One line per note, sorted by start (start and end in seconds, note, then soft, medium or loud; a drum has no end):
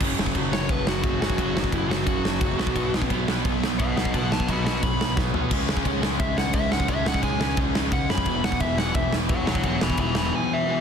0.00 0.17 F#1 medium
0.00 0.35 F#2 loud
0.00 0.35 C#3 loud
0.00 0.36 F#3 loud
0.00 kick loud
0.00 crash loud
0.18 0.34 F#1 medium
0.18 snare loud
0.26 kick medium
0.35 0.68 F#1 loud
0.35 0.51 F#2 medium
0.35 0.51 C#3 medium
0.35 0.51 F#3 medium
0.35 kick medium
0.35 ride medium
0.52 0.67 F#2 medium
0.52 0.67 C#3 medium
0.52 0.69 F#3 loud
0.52 0.71 C#5 loud
0.52 snare loud
0.68 1.02 F#1 loud
0.68 1.02 F#2 medium
0.68 1.02 C#3 medium
0.68 1.04 F#3 loud
0.68 0.87 B4 medium
0.68 kick loud
0.68 ride medium
0.87 1.21 F#4 medium
0.87 snare loud
1.04 1.20 F#1 loud
1.04 1.20 F#2 medium
1.04 1.20 C#3 loud
1.04 1.20 F#3 medium
1.04 kick loud
1.04 ride medium
1.21 1.38 F#1 medium
1.21 1.37 F#2 medium
1.21 1.37 C#3 medium
1.21 1.38 F#3 medium
1.21 1.72 F#4 medium
1.21 snare loud
1.30 kick medium
1.38 1.55 F#1 loud
1.38 1.71 F#2 medium
1.38 1.72 C#3 loud
1.38 1.73 F#3 loud
1.38 kick medium
1.38 ride medium
1.56 1.72 F#1 medium
1.56 snare loud
1.64 kick medium
1.72 2.05 F#1 loud
1.72 1.89 F#2 medium
1.72 1.89 C#3 loud
1.72 1.89 F#3 loud
1.72 1.90 E4 medium
1.72 kick medium
1.72 ride medium
1.89 2.04 F#2 medium
1.89 2.04 C#3 medium
1.89 2.05 F#3 loud
1.89 2.06 F#4 loud
1.89 snare loud
2.05 2.40 F#1 loud
2.05 2.38 F#2 medium
2.05 2.39 C#3 loud
2.05 2.40 F#3 medium
2.05 3.08 F#4 medium
2.05 kick loud
2.05 ride medium
2.25 snare loud
2.39 2.58 F#1 loud
2.39 2.57 F#2 medium
2.39 2.57 C#3 loud
2.39 2.57 F#3 loud
2.39 kick loud
2.39 ride medium
2.57 2.75 B1 medium
2.57 2.76 B2 medium
2.57 2.76 F#3 medium
2.57 2.75 B3 loud
2.57 snare loud
2.67 kick medium
2.75 2.92 B1 loud
2.75 3.11 B2 medium
2.75 3.11 F#3 loud
2.75 3.09 B3 loud
2.75 kick medium
2.75 ride medium
2.93 3.10 B1 medium
2.93 snare loud
3.02 kick medium
3.10 3.43 B1 loud
3.10 3.27 B2 medium
3.10 3.28 F#3 medium
3.10 3.29 B3 medium
3.10 kick medium
3.10 ride medium
3.28 3.44 B2 medium
3.28 3.44 F#3 medium
3.28 3.43 B3 loud
3.28 snare loud
3.44 3.77 B1 loud
3.44 3.79 B2 medium
3.44 3.79 F#3 medium
3.44 3.78 B3 loud
3.44 kick loud
3.44 ride medium
3.64 snare loud
3.79 3.96 B1 loud
3.79 3.95 B2 medium
3.79 3.96 F#3 medium
3.79 3.96 B3 medium
3.79 3.96 D#5 medium
3.79 3.97 F#5 medium
3.79 kick loud
3.79 ride medium
3.96 4.13 B1 medium
3.96 4.13 B2 medium
3.96 4.13 F#3 medium
3.96 4.13 B3 medium
3.96 4.13 D#5 medium
3.96 4.12 F#5 medium
3.96 snare loud
4.05 kick medium
4.14 4.30 B1 loud
4.14 4.49 B2 medium
4.14 4.48 F#3 loud
4.14 4.48 B3 loud
4.14 4.30 F#5 medium
4.14 4.31 A5 medium
4.14 kick medium
4.14 ride medium
4.31 4.48 B1 medium
4.31 4.47 F#5 medium
4.31 4.48 A5 loud
4.31 snare loud
4.40 kick medium
4.49 4.81 B1 loud
4.49 4.64 B2 medium
4.49 4.65 F#3 medium
4.49 4.65 B3 medium
4.49 4.64 D#5 medium
4.49 4.64 B5 medium
4.49 kick medium
4.49 ride medium
4.65 4.82 B2 medium
4.65 4.81 F#3 medium
4.65 4.81 B3 loud
4.65 4.82 D#5 loud
4.65 4.82 B5 medium
4.65 snare loud
4.82 5.15 B1 loud
4.82 5.16 B2 medium
4.82 5.15 F#3 loud
4.82 5.15 B3 loud
4.82 5.16 B5 medium
4.82 kick loud
4.82 ride medium
5.01 snare loud
5.16 5.33 B1 loud
5.16 5.32 B2 medium
5.16 5.32 F#3 medium
5.16 5.33 B3 medium
5.16 kick loud
5.16 snare medium
5.33 5.50 B1 medium
5.33 5.50 B2 medium
5.33 5.50 F#3 medium
5.33 5.50 B3 medium
5.33 floor tom medium
5.50 5.67 C#2 medium
5.50 5.84 C#3 loud
5.50 5.85 G#3 loud
5.50 5.85 C#4 loud
5.50 kick loud
5.50 crash loud
5.69 5.85 C#2 medium
5.69 snare loud
5.77 kick medium
5.85 6.18 C#2 loud
5.85 6.01 C#3 medium
5.85 6.01 G#3 medium
5.85 6.01 C#4 loud
5.85 kick medium
5.85 ride medium
6.01 6.17 C#3 medium
6.01 6.19 G#3 medium
6.01 6.19 C#4 medium
6.01 snare loud
6.18 6.52 C#2 loud
6.18 6.52 C#3 medium
6.18 6.54 G#3 loud
6.18 6.54 C#4 loud
6.18 6.37 E5 loud
6.18 kick loud
6.18 ride medium
6.38 6.54 F#5 medium
6.38 snare loud
6.53 6.70 C#2 loud
6.53 6.70 C#3 medium
6.53 6.71 G#3 medium
6.53 6.70 C#4 medium
6.53 6.71 E5 loud
6.53 kick loud
6.53 ride medium
6.71 6.88 C#2 medium
6.71 6.87 C#3 medium
6.71 6.89 G#3 medium
6.71 6.89 C#4 loud
6.71 6.89 F#5 medium
6.71 snare loud
6.80 kick medium
6.88 7.05 C#2 loud
6.88 7.23 C#3 loud
6.88 7.24 G#3 loud
6.88 7.24 C#4 loud
6.88 7.06 E5 medium
6.88 kick medium
6.88 ride medium
7.06 7.22 C#2 medium
7.06 7.23 F#5 medium
7.06 snare loud
7.14 kick medium
7.23 7.55 C#2 medium
7.23 7.41 C#3 medium
7.23 7.41 G#3 medium
7.23 7.39 C#4 medium
7.23 7.57 G#5 loud
7.23 kick medium
7.23 ride medium
7.40 7.56 C#3 medium
7.40 7.58 G#3 medium
7.40 7.57 C#4 medium
7.40 snare loud
7.57 7.90 C#2 loud
7.57 7.91 C#3 medium
7.57 7.92 G#3 loud
7.57 7.92 C#4 loud
7.57 kick loud
7.57 ride medium
7.75 snare loud
7.92 8.08 C#2 loud
7.92 8.09 C#3 medium
7.92 8.10 G#3 medium
7.92 8.08 C#4 medium
7.92 8.09 F#5 medium
7.92 kick loud
7.92 ride medium
8.09 8.25 F#2 medium
8.09 8.26 C#3 medium
8.09 8.27 G#3 medium
8.09 8.26 C#4 medium
8.09 8.43 B5 loud
8.09 snare loud
8.18 kick medium
8.25 8.42 E1 medium
8.25 8.61 E2 medium
8.25 8.60 B2 medium
8.25 8.62 E3 loud
8.25 kick medium
8.25 ride medium
8.43 8.60 E1 medium
8.43 8.60 F#5 loud
8.43 snare loud
8.52 kick medium
8.60 8.93 E1 medium
8.60 8.80 E2 medium
8.60 8.78 B2 medium
8.60 8.79 E3 loud
8.60 8.78 E5 medium
8.60 kick medium
8.60 ride medium
8.78 8.95 E2 medium
8.78 8.95 B2 loud
8.78 8.95 E3 loud
8.78 8.94 F#5 medium
8.78 snare loud
8.94 9.27 E1 loud
8.94 9.28 E2 medium
8.94 9.29 B2 loud
8.94 9.29 E3 loud
8.94 9.12 E5 loud
8.94 kick loud
8.94 ride medium
9.13 snare loud
9.29 9.45 E1 loud
9.29 9.47 E2 medium
9.29 9.46 B2 medium
9.29 9.45 E3 medium
9.29 9.46 C#5 medium
9.29 9.46 F#5 loud
9.29 kick loud
9.29 ride medium
9.47 9.63 E1 medium
9.47 9.63 E2 medium
9.47 9.63 B2 medium
9.47 9.64 E3 medium
9.47 9.63 C#5 medium
9.47 9.63 F#5 medium
9.47 snare loud
9.55 kick medium
9.63 9.80 E1 loud
9.63 9.97 E2 loud
9.63 9.98 B2 loud
9.63 9.99 E3 loud
9.63 9.80 C#5 medium
9.63 9.82 F#5 medium
9.63 kick medium
9.63 ride medium
9.81 9.97 E1 medium
9.81 9.98 G#5 medium
9.81 9.99 B5 medium
9.81 snare loud
9.90 kick medium
9.97 10.30 E1 loud
9.97 10.15 E2 loud
9.97 10.15 B2 medium
9.97 10.14 E3 loud
9.97 10.15 G#5 medium
9.97 10.16 B5 medium
9.97 kick medium
9.97 ride medium
10.15 10.31 E2 medium
10.15 10.32 B2 medium
10.15 10.33 E3 medium
10.15 10.32 G#5 medium
10.15 10.33 B5 loud
10.15 snare loud
10.33 10.67 E2 medium
10.33 10.67 B2 medium
10.33 10.67 E3 loud
10.33 10.80 G#5 loud
10.53 10.80 E5 loud
10.68 10.80 E2 medium
10.68 10.80 B2 medium
10.68 10.80 E3 medium